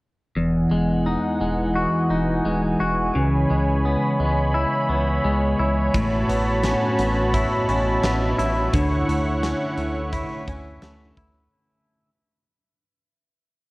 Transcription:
0.35 0.67 E1 medium
0.35 3.15 E2 medium
0.35 5.90 E3 medium
0.35 3.12 D#5 medium
0.35 3.12 F#5 medium
0.35 5.90 G#5 medium
0.71 1.17 E1 medium
0.71 1.40 G#3 medium
1.06 2.09 D#4 medium
1.41 1.87 E1 medium
1.41 2.45 G#3 medium
1.75 2.79 F#4 medium
2.10 2.41 E1 medium
2.10 3.22 D#4 medium
2.45 2.76 E1 medium
2.45 3.50 G#3 medium
2.80 3.11 E1 loud
2.80 3.22 F#4 medium
3.14 3.46 C#2 loud
3.14 5.94 C#3 medium
3.14 8.69 C#5 medium
3.14 5.91 B5 medium
3.50 3.96 C#2 medium
3.50 4.19 G#3 medium
3.85 4.89 B3 medium
4.20 4.66 C#2 medium
4.20 5.23 G#3 medium
4.54 5.59 E4 medium
4.89 5.20 C#2 medium
4.89 6.29 B3 medium
5.25 5.55 C#2 medium
5.25 6.01 G#3 medium
5.59 5.90 C#2 medium
5.59 7.33 E4 medium
5.94 6.25 A1 loud
5.94 8.73 A2 medium
5.94 8.71 F#4 medium
5.94 8.71 A5 medium
5.94 8.71 B5 medium
5.94 kick loud
5.94 closed hi-hat medium
6.29 6.75 A1 medium
6.29 6.98 B3 medium
6.29 closed hi-hat soft
6.64 7.68 C#4 medium
6.64 8.44 D#5 medium
6.64 snare medium
6.64 closed hi-hat medium
6.99 7.45 A1 medium
6.99 8.03 B3 medium
6.99 closed hi-hat soft
7.34 8.38 E4 medium
7.34 9.04 E5 medium
7.34 kick medium
7.34 closed hi-hat medium
7.69 7.99 A1 medium
7.69 9.42 C#4 soft
7.69 closed hi-hat soft
8.03 8.34 A1 medium
8.03 8.80 B3 medium
8.03 snare medium
8.03 closed hi-hat medium
8.38 8.69 A1 loud
8.38 10.12 E4 medium
8.38 closed hi-hat medium
8.73 9.04 D2 loud
8.73 12.10 D3 medium
8.73 11.50 E4 medium
8.73 11.50 C#5 medium
8.73 11.50 F#5 medium
8.73 11.50 C#6 medium
8.73 kick loud
8.73 closed hi-hat medium
9.08 9.54 D2 medium
9.08 9.78 A3 medium
9.08 closed hi-hat soft
9.43 10.48 C#4 medium
9.43 11.22 B4 medium
9.43 snare medium
9.43 closed hi-hat medium
9.67 11.42 E5 medium
9.77 10.24 D2 medium
9.77 10.82 A3 medium
9.77 closed hi-hat soft
10.13 11.17 E4 medium
10.13 kick medium
10.13 closed hi-hat medium
10.48 10.79 D2 medium
10.48 12.10 C#4 soft
10.48 kick medium
10.48 closed hi-hat soft
10.82 11.13 D2 medium
10.82 12.09 A3 medium
10.82 snare loud
10.82 closed hi-hat medium
11.17 11.48 D2 medium
11.17 12.09 E4 medium
11.17 kick medium
11.17 closed hi-hat soft

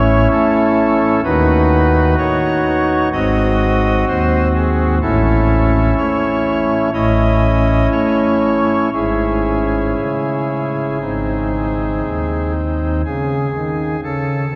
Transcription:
0.00 0.28 A1 medium
0.00 0.28 A2 medium
0.00 1.20 C#4 soft
0.00 1.20 E4 soft
0.00 0.28 C#5 loud
0.31 1.21 A3 medium
0.31 1.21 A4 loud
1.24 2.15 D#2 medium
1.24 2.15 D#3 medium
1.24 2.16 D#4 soft
1.24 3.08 F#4 soft
1.24 2.15 B4 loud
2.18 3.09 D#4 medium
2.18 3.09 C#5 loud
3.12 4.05 G#1 medium
3.12 4.04 G#2 medium
3.12 4.98 C4 soft
3.12 4.98 F#4 soft
3.12 4.05 D#5 loud
4.08 5.00 D#2 medium
4.08 4.48 C5 loud
4.55 4.95 G#4 medium
5.02 5.94 A1 medium
5.02 5.94 A2 medium
5.02 6.89 C#4 soft
5.02 6.89 E4 medium
5.02 5.94 A4 loud
5.97 6.90 A3 medium
5.97 6.90 C#5 medium
6.93 7.88 A1 medium
6.93 7.88 A2 medium
6.93 8.89 C#4 soft
6.93 8.89 E4 soft
6.93 7.88 D#5 medium
7.91 8.90 A3 medium
7.91 8.90 C#5 medium
8.93 9.95 G#1 medium
8.93 9.95 G#2 medium
8.93 10.98 C#4 soft
8.93 10.98 E4 soft
8.93 12.52 G#4 medium
9.98 10.99 C#3 medium
11.01 12.01 G#1 medium
11.01 12.01 G#2 soft
11.01 13.02 C4 soft
11.01 13.02 D#4 soft
12.04 13.03 D#2 medium
13.05 13.48 C#3 medium
13.05 14.00 G#4 medium
13.56 13.97 D#3 medium
14.04 14.45 C#3 medium
14.04 14.55 A4 medium
14.51 14.55 B2 medium

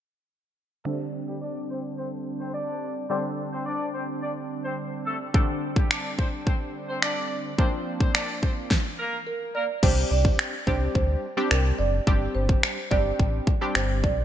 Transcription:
0.85 3.06 D3 medium
0.85 3.06 G3 medium
0.85 0.96 A3 medium
0.85 3.06 C4 medium
0.85 3.06 D4 medium
0.85 0.96 A4 medium
1.28 1.38 G3 medium
1.28 1.38 G4 medium
1.42 1.62 D4 medium
1.42 1.62 D5 medium
1.70 1.80 C4 medium
1.70 1.80 C5 medium
1.98 2.08 C4 medium
1.98 2.08 C5 medium
2.40 2.50 C4 medium
2.40 2.50 C5 medium
2.54 2.94 D4 medium
2.54 2.94 D5 medium
3.10 5.30 D3 medium
3.10 5.30 G3 medium
3.10 5.30 C4 medium
3.10 3.21 C4 medium
3.10 5.31 D4 medium
3.10 3.20 C5 medium
3.52 3.63 C4 medium
3.52 3.62 C5 medium
3.66 3.87 D4 medium
3.66 3.86 D5 medium
3.94 4.05 C4 medium
3.94 4.04 C5 medium
4.22 4.33 D4 medium
4.22 4.32 D5 medium
4.64 4.75 C4 medium
4.64 4.74 C5 medium
5.06 5.17 A3 medium
5.06 5.16 A4 medium
5.34 7.54 D3 medium
5.34 7.55 G3 medium
5.34 5.45 A3 medium
5.34 7.55 C4 medium
5.34 7.55 D4 medium
5.34 5.44 A4 medium
5.34 kick loud
5.76 5.87 G3 medium
5.76 5.86 G4 medium
5.76 kick medium
5.90 6.11 D4 medium
5.90 6.10 D5 medium
5.90 finger snap loud
6.18 6.29 C4 medium
6.18 6.28 C5 medium
6.18 kick medium
6.46 6.57 C4 medium
6.46 6.56 C5 medium
6.46 kick medium
6.88 6.99 C4 medium
6.88 6.98 C5 medium
7.02 7.43 D4 medium
7.02 7.42 D5 medium
7.02 finger snap loud
7.58 8.68 F3 medium
7.58 8.69 A#3 medium
7.58 8.69 C4 medium
7.58 7.69 C4 medium
7.58 8.69 D4 medium
7.58 7.69 C5 medium
7.58 kick loud
8.01 8.11 C4 medium
8.01 8.11 C5 medium
8.01 kick loud
8.15 8.35 D4 medium
8.15 8.34 D5 medium
8.15 finger snap loud
8.43 8.53 C4 medium
8.43 8.53 C5 medium
8.43 kick medium
8.71 kick loud
8.71 snare medium
8.99 9.19 A#3 medium
8.99 9.19 A#4 medium
9.27 9.39 A#4 medium
9.55 9.65 A#3 medium
9.55 9.65 A#4 medium
9.55 9.84 D5 medium
9.83 10.04 C2 loud
9.83 10.54 G3 medium
9.83 10.54 C4 medium
9.83 10.54 D4 medium
9.83 10.54 G4 medium
9.83 10.12 C5 loud
9.83 kick loud
9.83 crash medium
10.11 10.32 C2 loud
10.11 10.63 D5 medium
10.25 kick loud
10.39 finger snap loud
10.67 10.88 C2 medium
10.67 11.26 G3 medium
10.67 11.26 C4 medium
10.67 11.26 D4 medium
10.67 11.26 G4 medium
10.67 10.94 C5 medium
10.67 kick medium
10.95 11.16 D2 loud
10.95 11.53 C5 medium
10.95 kick medium
11.37 11.96 G3 medium
11.37 11.96 C4 medium
11.37 11.96 D4 medium
11.37 11.96 G4 medium
11.51 11.72 C2 medium
11.51 11.77 A#4 medium
11.51 finger snap loud
11.79 12.00 F#1 medium
11.79 12.37 D5 medium
12.07 12.28 G1 loud
12.07 12.78 G3 medium
12.07 12.78 C4 medium
12.07 12.78 D4 medium
12.07 12.78 G4 medium
12.07 kick loud
12.35 12.56 G1 loud
12.35 12.93 C5 medium
12.49 kick loud
12.63 finger snap loud
12.91 13.12 G1 medium
12.91 13.50 G3 medium
12.91 13.51 C4 medium
12.91 13.51 D4 medium
12.91 13.51 G4 medium
12.91 13.78 D5 loud
12.91 kick medium
13.20 13.41 A1 loud
13.20 kick medium
13.47 kick loud
13.61 14.21 G3 medium
13.61 14.21 C4 medium
13.61 14.21 D4 medium
13.61 14.21 G4 medium
13.75 14.05 G1 loud
13.75 14.02 C5 medium
13.75 finger snap loud
14.03 14.25 B1 medium
14.03 14.25 D5 medium
14.03 kick medium

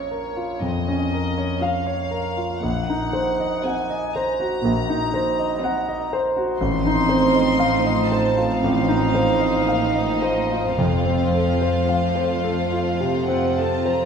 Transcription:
0.00 0.56 A#1 soft
0.00 0.37 F3 soft
0.00 0.88 C#4 soft
0.00 0.36 F4 soft
0.00 0.11 A#4 soft
0.00 0.36 A#4 soft
0.00 0.61 C#5 soft
0.00 1.38 C#5 soft
0.00 1.62 F5 soft
0.11 0.51 A#4 soft
0.37 0.76 F4 soft
0.61 1.41 F2 soft
0.61 1.01 F2 soft
0.61 1.61 D#5 soft
0.88 1.27 C#4 soft
1.13 1.52 A#4 soft
1.38 1.77 C#5 soft
1.60 2.38 F3 soft
1.60 2.39 C#4 soft
1.60 2.38 F4 soft
1.60 2.38 A#4 soft
1.60 2.63 F5 soft
1.60 2.02 F5 soft
1.86 2.27 C#5 soft
2.11 2.52 A#4 soft
2.37 2.63 F4 soft
2.62 3.45 A#1 soft
2.62 4.60 A#1 soft
2.62 3.45 A#2 soft
2.62 3.63 F#5 soft
2.90 3.29 D#4 soft
3.13 3.54 C5 soft
3.40 3.80 D#5 soft
3.64 4.40 F#3 soft
3.64 4.40 C4 soft
3.64 4.40 D#4 soft
3.64 4.40 C5 soft
3.64 4.05 F#5 soft
3.64 4.15 G#5 soft
3.90 4.29 D#5 soft
4.15 4.54 C5 soft
4.15 6.11 A#5 soft
4.40 4.79 F#4 soft
4.64 6.56 A#1 soft
4.64 5.43 A#2 soft
4.89 5.28 D#4 soft
5.14 5.52 C5 soft
5.39 5.77 D#5 soft
5.61 6.36 F#3 soft
5.61 6.36 C4 soft
5.61 6.36 D#4 soft
5.61 6.36 C5 soft
5.61 6.02 F#5 soft
5.89 6.27 D#5 soft
6.13 6.51 C5 soft
6.37 6.61 F#4 soft
6.59 7.56 A1 soft
6.59 8.58 A1 soft
6.59 10.73 A2 soft
6.59 8.57 F3 soft
6.59 8.57 C4 soft
6.59 8.57 D#4 soft
6.59 8.57 C5 soft
6.59 8.07 C6 medium
6.87 7.26 D#4 soft
7.09 7.49 C5 soft
7.35 7.75 D#5 soft
7.59 8.00 F5 soft
7.86 8.26 D#5 soft
8.10 8.52 C5 soft
8.10 8.61 A5 medium
8.37 8.78 F4 soft
8.60 10.74 A1 soft
8.60 10.73 F3 soft
8.60 9.64 C4 soft
8.60 10.73 D#4 soft
8.60 10.73 C5 soft
8.60 10.18 F5 medium
8.89 9.30 D#4 soft
9.15 9.57 C5 soft
9.40 9.83 D#5 soft
9.67 10.75 A#3 soft
9.67 10.11 F5 soft
9.95 10.39 D#5 soft
10.21 10.67 C5 soft
10.21 10.77 D#5 soft
10.52 10.79 F4 soft
10.76 11.83 F1 soft
10.76 14.05 F2 soft
10.76 12.97 F2 soft
10.76 14.05 F3 soft
10.76 14.05 A3 soft
10.76 14.05 F4 soft
10.76 14.05 C5 soft
10.76 13.24 F5 medium
11.05 11.49 C4 soft
11.34 11.77 A4 soft
11.62 12.05 C5 soft
11.89 12.33 F5 soft
12.16 12.60 C5 soft
12.44 12.89 A4 soft
12.72 13.18 F4 soft
13.00 13.46 C3 soft
13.28 13.75 C4 soft
13.28 13.57 F#5 soft
13.58 14.04 A4 soft
13.58 13.87 A5 soft
13.85 14.05 C5 soft
13.85 14.05 A#5 soft

